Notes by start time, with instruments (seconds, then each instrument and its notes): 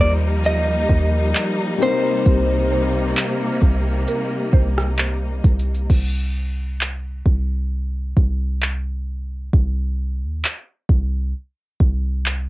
Already playing: string section F3 G3 A#3 D#4, felt piano G3 A#3 D#4 A#4
0.00 808-style bass D#2, clean electric guitar D5
0.44 clean electric guitar D#5, closed hi-hat
0.89 808-style bass D#2, kick
1.35 clap, closed hi-hat
1.78 string section C3 A#3, felt piano G3 A#3 C4, closed hi-hat
1.83 felt piano D#4 A#4, clean electric guitar C5
2.26 808-style bass C2, kick, closed hi-hat
2.72 synth pluck C5
3.17 clap, closed hi-hat
3.62 808-style bass C2, kick
4.08 synth pluck A#4, closed hi-hat
4.53 808-style bass C2, synth pluck C5, kick
4.78 cross-stick
4.98 clap, closed hi-hat
5.44 808-style bass C2, kick, closed hi-hat
5.59 closed hi-hat
5.75 closed hi-hat
5.90 808-style bass C2, kick, crash
6.81 clap
7.26 808-style bass C2, kick
8.17 808-style bass C2, kick
8.62 clap
9.53 808-style bass C2, kick
10.24 808-style bass D#2
10.45 clap
10.89 808-style bass C2, kick
11.80 808-style bass C2, kick
12.26 clap